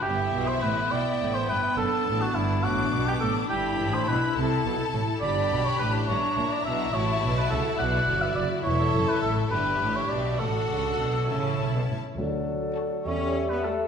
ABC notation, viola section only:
X:1
M:6/8
L:1/8
Q:3/8=69
K:G
V:1 name="Viola section"
B,6- | B,6 | E6 | [K:D] D6 |
F6 | E3 D3 | D3 C2 z | z2 F z2 G |]